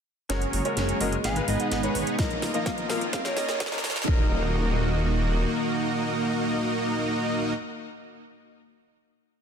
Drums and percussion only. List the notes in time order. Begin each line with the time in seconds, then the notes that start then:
0.30 snare, closed hi-hat
0.42 closed hi-hat
0.53 open hi-hat
0.65 closed hi-hat
0.77 snare, closed hi-hat
0.89 closed hi-hat
1.01 open hi-hat
1.12 closed hi-hat
1.24 snare, closed hi-hat
1.36 closed hi-hat
1.48 open hi-hat
1.60 closed hi-hat
1.72 snare, closed hi-hat
1.83 closed hi-hat
1.95 open hi-hat
2.07 closed hi-hat
2.19 kick, snare, closed hi-hat
2.31 closed hi-hat
2.42 snare, open hi-hat
2.54 closed hi-hat
2.66 kick, snare, closed hi-hat
2.78 closed hi-hat
2.90 snare, open hi-hat
3.01 closed hi-hat
3.13 kick, snare, closed hi-hat
3.25 snare, closed hi-hat
3.37 snare, open hi-hat
3.49 snare, closed hi-hat
3.60 kick, snare, closed hi-hat
3.66 snare
3.72 snare, closed hi-hat
3.78 snare
3.84 snare, open hi-hat
3.90 snare
3.96 snare, closed hi-hat
4.02 snare
4.08 kick